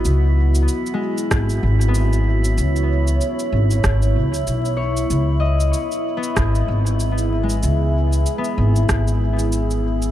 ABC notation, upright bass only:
X:1
M:4/4
L:1/8
Q:"Swing 16ths" 1/4=95
K:C#m
V:1 name="Upright bass" clef=bass
C,,2 z2 G,,, G,,,3 | C,,2 z G,,, G,,, C,, B,,,2 | C,,2 z2 G,,, G,,,3 | C,,2 z G,,, G,,,4 |]